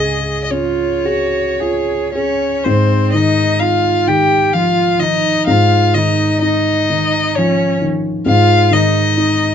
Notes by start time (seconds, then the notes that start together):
Already playing: C#2 G#4 D#5
0.44 D#5
0.50 C#4 F4 C#5
1.05 F#4 G#4
1.60 F4 G#4
2.13 C#4 G#4 C#5
2.64 G#2 C4 C5
3.13 D#3 D#4 D#5
3.60 D#4 F4 F5
4.07 D#3 G4 G5
4.53 F3 F5
4.57 F4
4.99 D#3 D#4 D#5
5.47 G#2 F4 F5
5.95 D#3 D#4 D#5
6.42 D#4 D#5
6.90 D#3
7.35 F3 C#4 C#5
7.82 D#3
8.26 G#2 F4 F5
8.71 D#3 D#4 D#5
9.17 D#4